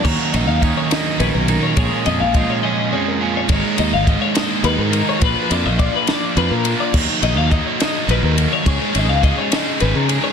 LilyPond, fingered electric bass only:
\new Staff \with { instrumentName = "Fingered electric bass" } { \clef bass \time 6/8 \key ees \minor \tempo 4. = 70 ees,16 r16 bes,,16 ees,8 r8. bes,,16 ces,8 r16 | bes,,16 r16 f,16 bes,,8 r4. r16 | aes,,16 r16 ees,16 aes,,8 r8. ees,16 aes,8 r16 | bes,,16 r16 f,16 bes,,8 r8. f,16 bes,8 r16 |
ees,16 r16 bes,,16 ees,8 r8. bes,,16 ees,8 r16 | des,16 r16 aes,,16 des,8 r8. aes,,16 des8 r16 | }